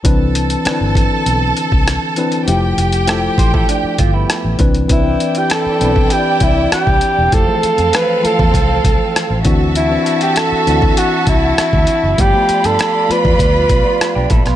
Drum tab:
HH |x-xxx-x-x-x-x-xx|x-xxx-x-x-x-x-xx|x-xxx-x-x-x-x-x-|x-xxx-x-x-x-x-x-|
SD |----r-------r---|----r-------r---|----r-------r---|----r-------r---|
BD |o-----o----o----|------oo--o---o-|o------o--o--o--|o------oo-o---o-|

HH |x-xxx-x-x-x-x-x-|x-xxx-x-x-x-x-xx|
SD |----r-------r---|----r-------r--r|
BD |-------o--o--o--|o------oo-o---o-|